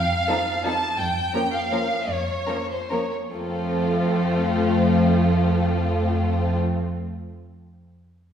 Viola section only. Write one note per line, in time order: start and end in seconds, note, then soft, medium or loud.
0.29 0.37 F3 soft
0.29 0.37 C4 soft
0.65 0.73 F3 soft
0.65 0.73 C4 soft
1.35 1.43 F3 soft
1.35 1.43 A#3 soft
1.72 1.80 F3 soft
1.72 1.80 A#3 soft
2.49 2.57 F3 soft
2.49 2.57 A#3 soft
2.91 3.00 F3 soft
2.91 2.99 A#3 soft
3.33 6.59 F3 soft
3.33 6.59 A3 soft